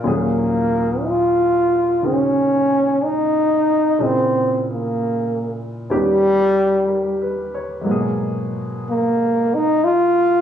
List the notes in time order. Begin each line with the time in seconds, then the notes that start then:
Already playing: A#4
0.04 D#2 A#2 F#3 C#4 F4 G#4
0.10 A#3
1.05 F4
2.02 C#3 D#4 F#4 G#4 A#4
2.06 C#4
3.05 D#4
3.99 A#2 C#3 A#3 E4 G#4
4.04 C4
4.73 A#3
5.90 D#2 D#3 B3 C#4 G4
5.95 G3
6.88 A#4
7.22 B4
7.54 C#5
7.81 G#2 F#3
7.86 B2 A#3
7.91 G#4
8.90 A#3
9.55 D#4
9.84 F4